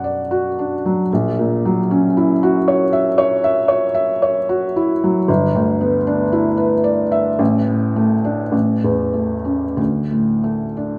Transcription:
Already playing: B1 D4 D5 F#5
0.04 D5
0.31 F#4
0.59 D4
0.86 F#3
1.13 A#1
1.39 A#2
1.65 F#3
1.91 C#4
2.17 E4
2.43 F#4
2.68 C#5
2.93 E5
3.18 C#5
3.44 E5
3.68 C#5
3.95 E5
4.22 C#5
4.49 F#4
4.76 E4
5.04 F#3
5.28 G1
5.55 D2
5.81 B3
6.07 D4
6.32 E4
6.57 B4
6.84 D5
7.12 E5
7.39 A1
7.67 A2
7.96 A3
8.24 D4
8.52 A1
8.84 E2
9.14 A3
9.45 C#4
9.77 D2
10.11 A2
10.44 A3
10.77 D4

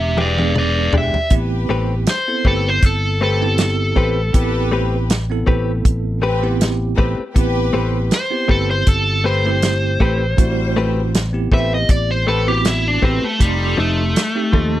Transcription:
Already playing: E1 G#3 B3 D4 G4 E5
0.17 E3 G#3 D4 G4 B4 D5, high tom
0.38 G#3 B3 D4 G#4, high tom
0.55 B4 D5, mid tom
0.93 E1 E3 G#3 D4 G4, floor tom
0.98 E5
1.14 muted fingered electric bass stroke, floor tom
1.30 A1 B3 C4 E4 G4 B4, kick, closed hi-hat
1.69 A1 A3 C4 G4 B4
2.06 C5, snare, closed hi-hat
2.28 B3 C4 E4 A4
2.45 G1 A3 C4 G4 A4 B4, kick
2.68 C5
2.82 G1 A4, kick, closed hi-hat
3.18 A3 C4 G4 A4
3.23 A4 B4
3.41 B3 C4 E4 G4
3.58 snare, closed hi-hat
3.95 A1 A3 C4 G4 B4, kick
4.33 A1 B3 C4 E4 G4 B4, kick, closed hi-hat
4.71 A3 C4 G4 B4
5.10 snare, closed hi-hat
5.30 B3 C4 E4 A4
5.47 A1 A3 C4 G4 B4, kick
5.85 A1, kick, closed hi-hat
6.22 A3 C4 G4 B4
6.43 B3 C4 E4 G4
6.61 snare, closed hi-hat
6.96 A1 A3 C4 G4 B4, kick
7.19 muted fingered electric bass stroke
7.34 A1 B3 C4 E4 G4 B4, kick, closed hi-hat
7.73 A1 A3 C4 G4 B4
8.11 C5, snare, closed hi-hat
8.30 B3 C4 E4 G4
8.48 G1 A3 C4 G4 A4 B4, kick
8.71 C5
8.87 G1 A4, kick, closed hi-hat
9.24 A3 C4 G4 A4 B4 C5
9.45 A3 C4 E4 G4
9.62 snare, closed hi-hat
10.00 A1 A3 C4 G4 B4, kick
10.37 A1 G3 A3 C4 E4 F#4 C5, kick, closed hi-hat
10.76 A3 C4 G4 B4
11.14 snare, closed hi-hat
11.33 B3 C4 E4 G4
11.52 A1 A3 C4 G4 B4 E5, kick
11.74 D#5
11.89 A1 D5, kick, closed hi-hat
12.11 C5
12.25 A3 C4 G4 A4 B4
12.47 B3 C4 E4 F#4 G4
12.65 E4, snare, closed hi-hat
12.88 D4
13.02 A1 A3 C4 G4 B4, kick
13.24 A3, muted fingered electric bass stroke
13.39 F1 G3 A3 C4 D#4 F4 G4 A4, kick, closed hi-hat
13.77 F1 F3 A3 C4 D#4 A4
14.16 snare, closed hi-hat
14.35 A3 C4 D#4 G4
14.53 D#2 F3 C4 D#4 A4, kick

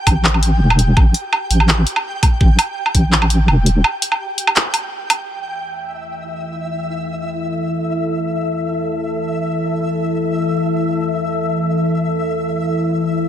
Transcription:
Already playing: G5
0.07 A1, kick, closed hi-hat, low woodblock
0.25 clap
0.34 low woodblock
0.43 closed hi-hat
0.60 E1
0.70 low woodblock
0.79 closed hi-hat
0.97 A1, kick, low woodblock
1.14 closed hi-hat
1.33 low woodblock
1.51 A1, closed hi-hat
1.60 low woodblock
1.69 clap
1.87 closed hi-hat
1.96 low woodblock
2.23 kick, closed hi-hat, low woodblock
2.41 A1, kick
2.59 closed hi-hat, low woodblock
2.86 low woodblock
2.95 A1, kick, closed hi-hat
3.12 clap
3.22 low woodblock
3.30 closed hi-hat
3.48 E1, low woodblock
3.66 closed hi-hat
3.84 low woodblock
4.02 closed hi-hat
4.12 low woodblock
4.38 closed hi-hat
4.47 low woodblock
4.56 clap, closed hi-hat
4.74 closed hi-hat, low woodblock
5.10 closed hi-hat, low woodblock
5.28 E3 E5
5.46 A4
5.61 E4
6.54 A5
12.29 D6

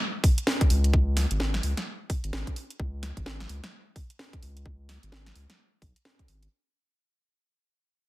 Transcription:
0.24 kick, open hi-hat
0.38 closed hi-hat
0.47 snare
0.61 kick, closed hi-hat
0.70 C#2, open hi-hat
0.84 closed hi-hat
0.93 kick
1.17 snare, open hi-hat
1.31 G#1, closed hi-hat
1.40 snare
1.54 snare, closed hi-hat
1.63 C#2, open hi-hat
1.77 snare, closed hi-hat
2.10 kick, open hi-hat
2.24 G#1, closed hi-hat
2.33 G#1, snare, closed hi-hat
2.47 kick, closed hi-hat
2.56 open hi-hat
2.70 closed hi-hat
2.80 C#2, kick
3.03 snare, open hi-hat
3.17 G#1, kick, closed hi-hat
3.26 snare
3.40 snare, closed hi-hat
3.49 C#2, open hi-hat
3.64 snare, closed hi-hat
3.96 kick, open hi-hat
4.10 closed hi-hat
4.19 snare
4.33 kick, closed hi-hat
4.42 C#2, open hi-hat
4.57 closed hi-hat
4.66 kick
4.89 snare, open hi-hat
5.03 G#1, closed hi-hat
5.12 snare
5.26 snare, closed hi-hat
5.36 C#2, open hi-hat
5.50 snare, closed hi-hat
5.82 B1, kick, open hi-hat
5.96 closed hi-hat
6.05 snare, closed hi-hat
6.19 kick, closed hi-hat
6.28 G#1, open hi-hat
6.43 closed hi-hat

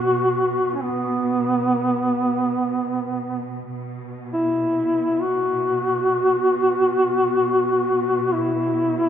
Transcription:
Already playing: B2 F#4
0.74 C#4
0.83 B3
3.74 B2
4.33 E4
5.21 F#4
8.34 E4

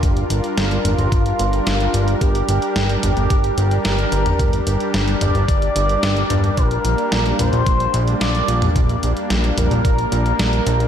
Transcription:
Already playing: G3 D4 F4 G4 A#4
0.03 G1, kick, closed hi-hat
0.17 closed hi-hat
0.30 G1, closed hi-hat
0.44 closed hi-hat
0.57 G1, snare, closed hi-hat
0.71 closed hi-hat
0.85 G1 F4, closed hi-hat, mid tom
0.98 G1, closed hi-hat
1.12 G1, kick, closed hi-hat
1.26 closed hi-hat
1.39 G1, closed hi-hat
1.53 closed hi-hat
1.67 G1, snare, closed hi-hat
1.80 closed hi-hat
1.94 G1, closed hi-hat
2.08 closed hi-hat
2.21 G1 G4, kick, closed hi-hat
2.35 closed hi-hat
2.49 G1, closed hi-hat
2.62 closed hi-hat
2.76 G1, snare, closed hi-hat
2.89 closed hi-hat
3.03 G1 G4, closed hi-hat, mid tom
3.17 G1, closed hi-hat
3.30 G1, kick, closed hi-hat
3.44 closed hi-hat
3.58 G1, closed hi-hat
3.71 closed hi-hat
3.85 G1 A#4, snare, closed hi-hat
3.99 closed hi-hat
4.12 G1, closed hi-hat
4.26 closed hi-hat, mid tom
4.39 G1, kick, closed hi-hat
4.53 closed hi-hat
4.67 G1, closed hi-hat
4.80 closed hi-hat
4.94 G1, snare, closed hi-hat
5.08 closed hi-hat
5.21 G1 D5, closed hi-hat, mid tom
5.35 G1, closed hi-hat
5.48 G1, kick, closed hi-hat
5.62 closed hi-hat
5.76 G1, closed hi-hat
5.89 closed hi-hat
6.03 G1, snare, closed hi-hat
6.17 closed hi-hat
6.30 G1, closed hi-hat, mid tom
6.44 closed hi-hat
6.57 A#1 A#3 A#4, kick, closed hi-hat
6.71 closed hi-hat
6.85 A#1, closed hi-hat
6.98 closed hi-hat
7.12 A#1, snare, closed hi-hat
7.26 closed hi-hat
7.39 A#1 C5, closed hi-hat, mid tom
7.53 A#1, closed hi-hat
7.66 A#1, kick, closed hi-hat
7.80 closed hi-hat
7.94 A#1, closed hi-hat
8.08 closed hi-hat
8.21 A#1 D5, snare, closed hi-hat
8.35 closed hi-hat
8.48 A#1, closed hi-hat
8.62 closed hi-hat, mid tom
8.76 A#1, kick, closed hi-hat
8.89 closed hi-hat
9.03 A#1, closed hi-hat
9.17 closed hi-hat
9.30 A#1, snare, closed hi-hat
9.44 closed hi-hat
9.58 A#1 A#4, closed hi-hat, mid tom
9.71 A#1, closed hi-hat
9.85 A#1, kick, closed hi-hat
9.98 closed hi-hat
10.12 A#1, closed hi-hat
10.26 closed hi-hat
10.39 A#1, snare, closed hi-hat
10.53 closed hi-hat
10.67 A#1, closed hi-hat
10.80 closed hi-hat

